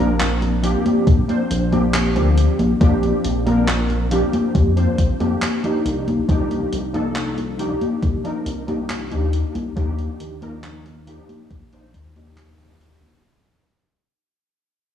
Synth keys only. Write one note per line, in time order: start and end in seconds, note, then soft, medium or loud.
0.00 0.58 F3 loud
0.00 0.58 A#3 medium
0.00 0.58 C4 medium
0.00 0.58 D4 medium
0.00 0.58 A#4 loud
0.62 1.23 F3 medium
0.62 1.23 A#3 medium
0.62 1.23 C4 medium
0.62 1.23 D4 medium
0.62 1.24 G4 loud
1.28 1.67 F3 medium
1.28 1.67 A#3 medium
1.28 1.67 C4 medium
1.28 1.67 D4 medium
1.28 1.67 C5 medium
1.71 2.10 F3 medium
1.71 2.10 A#3 medium
1.71 2.10 C4 medium
1.71 2.10 D4 medium
1.71 2.11 G4 loud
2.15 2.75 F3 medium
2.15 2.75 A#3 medium
2.15 2.76 C4 medium
2.15 2.76 D4 medium
2.15 2.76 G4 medium
2.80 3.41 F3 loud
2.80 3.41 A#3 medium
2.80 3.41 C4 medium
2.80 3.41 D4 loud
2.80 3.41 G4 loud
3.45 4.06 F3 medium
3.45 4.06 A#3 medium
3.45 4.06 C4 medium
3.45 4.06 D4 medium
3.45 4.06 A#4 loud
4.11 4.71 F3 loud
4.11 4.71 A#3 medium
4.11 4.71 C4 medium
4.11 4.72 D4 medium
4.11 4.72 G4 loud
4.76 5.14 F3 medium
4.76 5.15 A#3 medium
4.76 5.15 C4 medium
4.76 5.15 D4 medium
4.76 5.15 C5 loud
5.19 5.58 F3 medium
5.19 5.58 A#3 medium
5.19 5.58 C4 medium
5.19 5.58 D4 medium
5.19 5.59 G4 medium
5.63 6.23 F3 medium
5.63 6.23 A#3 medium
5.63 6.23 D4 medium
5.63 6.24 D#4 medium
5.63 6.24 G4 medium
6.28 6.88 F3 loud
6.28 6.89 A#3 medium
6.28 6.89 D4 medium
6.28 6.89 D#4 medium
6.28 6.89 G4 loud
6.93 7.53 F3 loud
6.93 7.54 A#3 medium
6.93 7.54 D4 medium
6.93 7.54 D#4 medium
6.93 7.54 A4 loud
7.58 8.19 F3 medium
7.58 8.19 A#3 medium
7.58 8.19 D4 medium
7.58 8.19 D#4 medium
7.58 8.20 G4 loud
8.23 8.62 F3 medium
8.23 8.62 A#3 medium
8.23 8.63 D4 medium
8.23 8.63 D#4 medium
8.23 8.63 A#4 medium
8.67 9.06 F3 medium
8.67 9.06 A#3 medium
8.67 9.06 D4 medium
8.67 9.06 D#4 medium
8.67 9.06 G4 medium
9.10 9.71 F3 medium
9.10 9.71 A#3 medium
9.10 9.71 D4 medium
9.10 9.71 D#4 medium
9.10 9.71 G4 loud
9.75 10.36 F3 loud
9.75 10.36 A#3 medium
9.75 10.37 D4 loud
9.75 10.37 D#4 medium
9.75 10.37 G4 loud
10.41 11.01 F3 loud
10.41 11.01 A#3 medium
10.41 11.02 D4 medium
10.41 11.02 D#4 medium
10.41 11.02 A#4 loud
11.06 11.67 F3 loud
11.06 11.67 A#3 medium
11.06 11.67 D4 medium
11.06 11.67 D#4 medium
11.06 11.67 G4 loud
11.72 12.10 F3 medium
11.72 12.10 A#3 medium
11.72 12.11 D4 medium
11.72 12.11 D#4 medium
11.72 12.11 C5 loud
12.15 12.54 F3 medium
12.15 12.54 A#3 medium
12.15 12.54 D4 medium
12.15 12.54 D#4 medium
12.15 12.55 G4 medium
12.59 13.19 F3 medium
12.59 13.19 A#3 medium
12.59 13.19 D4 medium
12.59 13.19 D#4 medium
12.59 13.20 G4 loud